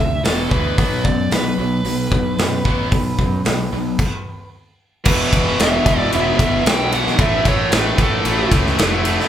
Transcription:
0.00 0.19 D2 medium
0.00 0.22 F2 medium
0.00 0.22 C3 medium
0.00 0.26 E5 medium
0.24 0.46 E1 medium
0.24 0.50 E2 medium
0.24 0.50 B2 medium
0.24 0.50 E3 medium
0.24 0.51 A4 medium
0.24 snare loud
0.24 open hi-hat medium
0.51 0.73 D2 medium
0.51 0.77 E2 medium
0.51 0.77 B2 medium
0.51 0.77 E3 medium
0.51 1.07 B4 medium
0.51 kick medium
0.78 1.00 B1 medium
0.78 1.03 B2 medium
0.78 1.03 F#3 medium
0.78 1.03 B3 medium
0.78 kick loud
0.78 open hi-hat medium
1.04 1.26 F#2 medium
1.04 1.29 B2 medium
1.04 1.29 F#3 medium
1.04 1.32 D5 medium
1.04 kick medium
1.31 1.53 B1 medium
1.31 1.56 B2 medium
1.31 1.56 F#3 medium
1.31 4.49 B4 medium
1.31 snare loud
1.31 open hi-hat medium
1.58 1.80 B1 medium
1.58 1.83 B2 medium
1.58 1.83 F#3 medium
1.85 2.07 B1 medium
1.85 2.10 B2 medium
1.85 2.10 F#3 medium
1.85 open hi-hat soft
2.12 2.33 B1 medium
2.12 2.36 B2 medium
2.12 2.37 F#3 medium
2.12 kick medium
2.38 2.60 F#2 medium
2.38 2.63 B2 medium
2.38 2.63 F#3 medium
2.38 snare loud
2.38 open hi-hat medium
2.65 2.87 A1 medium
2.65 2.90 B2 medium
2.65 2.90 F#3 medium
2.65 2.91 B3 medium
2.65 kick medium
2.92 3.13 B1 medium
2.92 3.16 B2 medium
2.92 3.16 F#3 medium
2.92 kick loud
2.92 open hi-hat medium
3.19 3.40 F#2 medium
3.19 3.43 B2 medium
3.19 3.43 F#3 medium
3.19 kick medium
3.45 3.67 B1 medium
3.45 3.70 B2 medium
3.45 3.70 F#3 medium
3.45 snare loud
3.45 open hi-hat medium
3.73 3.94 B1 medium
3.73 3.97 B2 medium
3.73 3.97 F#3 medium
3.99 kick medium
3.99 crash medium
5.05 5.25 E1 medium
5.05 5.31 E2 medium
5.05 5.32 B2 loud
5.05 5.33 E3 loud
5.05 5.61 B4 medium
5.05 kick loud
5.05 crash loud
5.32 5.51 E1 medium
5.32 5.58 E2 medium
5.32 5.58 B2 medium
5.32 5.59 E3 medium
5.32 kick medium
5.32 ride medium
5.59 5.78 E1 medium
5.59 5.84 E2 loud
5.59 5.84 B2 loud
5.59 5.86 E3 loud
5.59 6.10 E5 medium
5.59 snare loud
5.59 ride loud
5.85 6.05 E1 medium
5.85 6.11 E2 medium
5.85 6.12 B2 medium
5.85 6.12 E3 medium
5.85 kick medium
5.85 ride medium
6.12 6.32 E1 medium
6.12 6.39 E2 medium
6.12 6.39 B2 medium
6.12 6.40 E3 medium
6.12 6.68 E5 loud
6.12 ride loud
6.39 6.58 G1 medium
6.39 6.65 E2 loud
6.39 6.65 B2 loud
6.39 6.66 E3 loud
6.39 kick loud
6.39 ride medium
6.65 7.03 B1 medium
6.65 6.91 E2 medium
6.65 6.91 B2 medium
6.65 6.92 E3 medium
6.65 6.94 G5 loud
6.65 snare loud
6.65 ride loud
6.92 7.17 E2 medium
6.92 7.17 B2 medium
6.92 7.18 E3 medium
6.92 7.21 F#5 loud
6.92 ride medium
7.07 snare soft
7.19 7.38 A1 medium
7.19 7.44 A2 medium
7.19 7.45 E3 loud
7.19 7.46 A3 loud
7.19 7.47 E5 loud
7.19 kick loud
7.19 ride loud
7.45 7.64 A1 medium
7.45 7.69 A2 medium
7.45 7.70 E3 medium
7.45 7.71 A3 medium
7.45 7.74 C#5 medium
7.45 kick medium
7.45 ride medium
7.70 7.91 A1 loud
7.70 7.98 A2 medium
7.70 7.98 E3 loud
7.70 7.99 A3 loud
7.70 snare loud
7.70 ride loud
7.75 8.01 B4 medium
7.98 8.17 A1 medium
7.98 8.24 A2 medium
7.98 8.24 E3 loud
7.98 8.26 A3 medium
7.98 kick medium
7.98 ride medium
8.03 8.50 A4 medium
8.25 8.44 A1 medium
8.25 8.52 A2 medium
8.25 8.52 E3 medium
8.25 8.53 A3 medium
8.25 ride loud
8.52 8.71 C#2 medium
8.52 8.77 A2 medium
8.52 8.78 E3 loud
8.52 8.79 A3 loud
8.52 kick medium
8.52 ride medium
8.66 snare soft
8.79 9.16 F1 medium
8.79 9.03 A2 medium
8.79 9.04 E3 medium
8.79 9.05 A3 medium
8.79 snare loud
8.79 ride loud
9.04 9.28 A2 medium
9.04 9.28 E3 medium
9.04 9.28 A3 loud
9.04 ride medium
9.20 snare soft

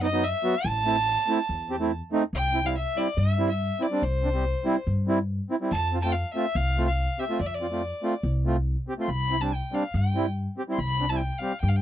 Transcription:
0.00 0.31 F#2 medium
0.00 0.07 B3 medium
0.00 0.08 D#4 medium
0.00 0.25 D#5 loud
0.12 0.23 F#3 medium
0.12 0.23 B3 medium
0.12 0.24 D#4 medium
0.24 0.68 E5 loud
0.43 0.54 F#3 medium
0.43 0.55 B3 medium
0.43 0.55 F#4 medium
0.64 1.15 A1 medium
0.64 1.92 A5 loud
0.85 0.96 A3 medium
0.85 0.97 C4 medium
0.85 0.97 E4 medium
1.28 1.39 A3 medium
1.28 1.39 C4 medium
1.28 1.39 E4 medium
1.49 2.00 E2 medium
1.70 1.75 C4 medium
1.70 1.76 G4 medium
1.80 1.91 A3 medium
1.80 1.91 C4 medium
1.80 1.92 E4 medium
2.12 2.23 A3 medium
2.12 2.23 C4 medium
2.12 2.23 D#4 loud
2.33 2.84 C2 medium
2.33 2.68 G5 loud
2.54 2.59 C4 medium
2.54 2.60 E4 medium
2.63 2.75 G3 soft
2.63 2.75 C4 soft
2.63 2.76 E4 medium
2.63 2.76 F5 medium
2.78 2.99 E5 medium
2.96 3.07 G3 medium
2.96 3.08 C4 medium
2.96 3.08 E4 medium
2.96 3.20 D5 medium
3.17 3.68 G2 medium
3.17 3.49 E5 medium
3.38 3.49 G3 medium
3.38 3.50 C4 medium
3.38 3.50 E4 medium
3.49 3.84 E5 medium
3.80 3.86 C4 medium
3.80 3.87 E4 medium
3.80 4.05 D5 medium
3.91 4.02 G3 medium
3.91 4.02 C4 medium
3.91 4.03 D4 medium
4.02 4.53 C2 medium
4.02 4.87 C5 medium
4.23 4.28 C4 medium
4.23 4.29 D4 medium
4.33 4.44 G3 soft
4.33 4.44 C4 soft
4.33 4.45 G4 medium
4.64 4.76 G3 medium
4.64 4.76 C4 medium
4.64 4.76 E4 medium
4.87 5.37 G2 medium
5.08 5.18 G3 medium
5.08 5.18 C4 medium
5.08 5.19 E4 medium
5.50 5.55 C4 medium
5.50 5.56 E4 loud
5.61 5.71 G3 medium
5.61 5.72 C4 medium
5.61 5.72 E4 medium
5.71 6.22 F2 medium
5.71 5.98 A5 loud
5.93 5.98 C4 medium
5.93 5.99 F4 medium
6.02 6.14 A3 soft
6.02 6.14 C4 soft
6.02 6.15 F4 medium
6.02 6.14 G5 medium
6.02 6.04 A5 medium
6.12 6.33 F5 medium
6.34 6.45 A3 medium
6.34 6.46 C4 medium
6.34 6.46 F4 medium
6.34 6.58 E5 medium
6.55 7.06 C2 loud
6.55 6.87 F5 loud
6.77 6.88 A3 medium
6.77 6.88 C4 medium
6.77 6.88 F4 medium
6.87 7.21 F5 medium
7.19 7.24 C4 medium
7.19 7.25 G4 medium
7.19 7.40 E5 medium
7.29 7.40 A3 medium
7.29 7.40 C4 medium
7.29 7.41 F4 medium
7.40 7.90 F2 medium
7.40 7.48 D5 medium
7.47 7.56 E5 medium
7.55 8.25 D5 medium
7.61 7.66 C4 medium
7.61 7.67 F4 medium
7.71 7.82 A3 medium
7.71 7.82 C4 medium
7.71 7.82 F4 medium
8.03 8.14 A3 medium
8.03 8.14 C4 medium
8.03 8.14 F4 medium
8.23 8.74 C2 medium
8.45 8.56 A3 medium
8.45 8.56 C4 medium
8.45 8.57 F4 medium
8.88 8.93 C4 medium
8.88 8.94 G4 loud
8.98 9.09 A3 medium
8.98 9.09 C4 medium
8.98 9.10 F4 medium
8.98 9.11 C6 medium
9.08 9.59 C2 medium
9.08 9.43 B5 loud
9.31 9.36 C4 medium
9.31 9.36 E4 medium
9.41 9.51 G3 medium
9.41 9.51 C4 soft
9.41 9.52 D4 medium
9.41 9.56 A5 medium
9.54 9.76 G5 medium
9.72 9.83 G3 medium
9.72 9.83 C4 medium
9.72 9.84 D4 medium
9.72 9.97 F5 medium
9.94 10.45 G2 loud
9.94 10.27 G5 medium
10.15 10.26 G3 medium
10.15 10.26 C4 medium
10.15 10.26 E4 medium
10.58 10.63 C4 medium
10.58 10.63 G4 medium
10.69 10.79 G3 medium
10.69 10.79 C4 soft
10.69 10.79 E4 medium
10.69 10.81 C6 medium
10.78 11.29 C2 medium
10.78 11.11 B5 loud
11.00 11.05 C4 medium
11.00 11.05 D4 medium
11.09 11.21 G3 medium
11.09 11.21 C4 medium
11.09 11.21 E4 medium
11.09 11.19 A5 medium
11.18 11.40 G5 medium
11.38 11.52 G3 medium
11.38 11.52 C4 medium
11.38 11.53 G4 medium
11.38 11.60 F5 medium
11.61 11.82 G2 loud
11.61 11.70 G5 medium
11.69 11.78 F5 medium
11.76 11.82 G5 medium

